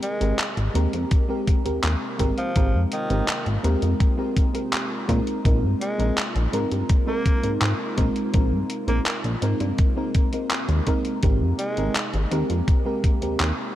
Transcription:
Already playing: C3 G#3 A#3 C4 D#4 G4 A#4
0.03 G#3, closed hi-hat
0.20 G#1 G#3 C4 G4 A#4, closed hi-hat
0.39 clap, closed hi-hat
0.57 G#1, closed hi-hat
0.74 D#2 G#3 C4 G4 A#4, closed hi-hat
0.93 F2, closed hi-hat
1.11 kick, closed hi-hat
1.28 G#3 C4 G4 A#4
1.47 kick, closed hi-hat
1.64 D#2 G#3 C4 G4 A#4, closed hi-hat
1.83 D#2, clap, closed hi-hat
2.18 G#1 G#3 C4 G4 A#4, kick, closed hi-hat
2.38 F3, closed hi-hat
2.55 G#1 G#3 C4 F4 G4 A#4, kick, closed hi-hat
2.74 F2
2.92 D#3, closed hi-hat
3.09 G#1 G#3 C4 G4 A#4, closed hi-hat
3.28 clap, closed hi-hat
3.46 G#1, closed hi-hat
3.63 D#2 G#3 C4 G4 A#4, closed hi-hat
3.82 F2, closed hi-hat
4.00 kick, closed hi-hat
4.17 G#3 C4 G4 A#4
4.37 kick, closed hi-hat
4.53 G#3 C4 G4 A#4, closed hi-hat
4.73 clap, closed hi-hat
5.08 A#2 C3 G#3 A#3 C4 D#4 A#4, kick, closed hi-hat
5.27 closed hi-hat
5.44 A#1 G#3 C4 D#4 A#4, kick, closed hi-hat
5.63 G2
5.81 G#3, closed hi-hat
5.98 A#1 G#3 C4 D#4 A#4, closed hi-hat
6.18 clap, closed hi-hat
6.35 A#1, closed hi-hat
6.52 G#2 G#3 C4 D#4 A#4, closed hi-hat
6.71 G2, closed hi-hat
6.89 kick, closed hi-hat
7.06 G#3 A#3 C4 D#4 A#4
7.26 kick, closed hi-hat
7.42 G#2 G#3 C4 D#4 A#4, closed hi-hat
7.62 G#2, clap, closed hi-hat
7.97 A#1 G#3 C4 D#4 A#4, kick, closed hi-hat
8.16 closed hi-hat
8.33 A#1 G#3 C4 D#4 A#4, kick, closed hi-hat
8.52 G2
8.70 closed hi-hat
8.87 A#1 G#3 A#3 C4 D#4 A#4, closed hi-hat
9.06 A#3, clap, closed hi-hat
9.24 A#1, closed hi-hat
9.42 G#2 G#3 C4 D#4 A#4, closed hi-hat
9.60 G2, closed hi-hat
9.78 kick, closed hi-hat
9.96 G#3 C4 D#4 A#4
10.15 kick, closed hi-hat
10.32 G#3 C4 D#4 A#4, closed hi-hat
10.50 clap, closed hi-hat
10.69 D#2, closed hi-hat
10.86 G#3 C4 D#4 A#4, kick, closed hi-hat
11.05 closed hi-hat
11.23 G#1 G#3 C4 G4 A#4, kick, closed hi-hat
11.41 F2
11.59 G#3, closed hi-hat
11.77 G#1 G#3 C4 G4 A#4, closed hi-hat
11.95 clap, closed hi-hat
12.13 G#1, closed hi-hat
12.31 D#2 G#3 C4 G4 A#4, closed hi-hat
12.50 F2, closed hi-hat
12.68 kick, closed hi-hat
12.85 G#3 C4 G4 A#4
13.04 kick, closed hi-hat
13.21 D#2 G#3 C4 G4 A#4, closed hi-hat
13.40 D#2, clap, closed hi-hat

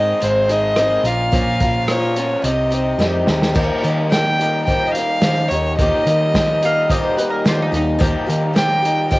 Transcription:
Already playing: G#2 D#3 G#3 C4 D#4 G#4 D#5
0.20 G#1 G#3 C4 D#4 G#4 C5, closed hi-hat
0.49 G#3 C4 D#4 G#4 D#5, closed hi-hat
0.76 G#2 D#3 G#3 C4 D#4 G#4, cross-stick, closed hi-hat
1.04 A#1 A#2 F4 A#4 F5, closed hi-hat
1.08 C#4
1.32 A#1 A#2 F3 C#4 F4 A#4, kick, closed hi-hat
1.60 A#2 F3 C#4 F4 A#4, kick, closed hi-hat
1.88 A#2 F3 C#4 F4 A#4 C#5, cross-stick, closed hi-hat
2.16 C#4 F4 A#4, closed hi-hat
2.42 C2 C3 D#3 C4 D#4 G4, closed hi-hat
2.46 D#5
2.70 C4 D#4 G4, closed hi-hat
2.98 F2 C3 D#3 G3 C4 D#4 G4, snare
3.27 D#2 D#4 G4, snare
3.31 C4
3.42 snare
3.55 D#2 D#3 F3 G3 A#3 D#4 G4 A#4, kick, crash
3.82 D#3 A#3 D#4 G4, closed hi-hat
4.10 F3 A#3 D#4 G4 G5, snare, closed hi-hat
4.39 A#3 D#4 G4, closed hi-hat
4.65 D#3 F3 A#3 D#4 G4 G5, kick, closed hi-hat
4.87 D#5
4.92 G4 F5, closed hi-hat
4.97 A#3 D#4
5.22 D#3 F3 A#3 D#4, snare, closed hi-hat
5.27 G4
5.48 D#2 G4 C#5, closed hi-hat
5.53 A#3 D#4
5.77 D#2 D#3 F3 G3 A#3 D#4 A#4 D#5, kick, closed hi-hat
5.81 G4
6.06 D#3 A#3 D#4 G4, closed hi-hat
6.34 F3 A#3 D#4 G4, kick, snare, closed hi-hat
6.63 A#3 D#4 G4 F5, closed hi-hat
6.90 D#3 F3 A#3 D#4 G4 D#5, kick, closed hi-hat
7.04 C5
7.17 A#3 D#4 G4 B4, closed hi-hat
7.30 A#4
7.45 D#3 F3 A#3 D#4 F4 G4, snare, closed hi-hat
7.62 D#4
7.72 D#2 A#3 D#4 G4, closed hi-hat
7.76 D#4
7.98 D#2 D#3 F3 G3 A#3 D#4 G4 A#4, kick, closed hi-hat
8.26 D#3 A#3 D#4 G4, closed hi-hat
8.53 F3 A#3 D#4 G4 G5, snare, closed hi-hat
8.82 A#3 D#4 G4, closed hi-hat
9.11 D#3 F3 A#3 D#4 G4 G5, kick, closed hi-hat

